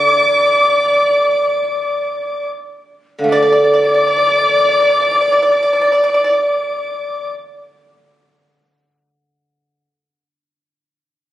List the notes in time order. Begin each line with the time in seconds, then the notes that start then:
Already playing: D3 D5 D6
3.19 D3 F5
3.24 A3
3.29 D4 D5 D6
3.42 D5
3.52 D5
3.64 D5
3.74 D5
3.84 D5
3.94 D5
4.07 D5
4.17 D5
4.26 D5
4.37 D5
4.48 D5
4.59 D5
4.69 D5
4.80 D5
4.90 D5
5.00 D5
5.11 D5
5.21 D5
5.32 D5
5.42 D5
5.52 D5
5.63 D5
5.73 D5
5.82 D5
5.92 D5
6.04 D5
6.14 D5
6.24 D5